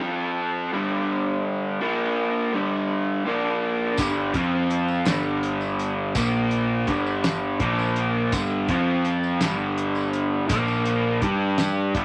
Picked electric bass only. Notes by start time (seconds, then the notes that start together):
3.98 G1
4.34 F2
5.07 G1
6.15 A#1
6.88 G1
7.60 A#1
8.33 G1
8.68 F2
9.42 G1
10.50 A#1
11.22 G2
11.95 G1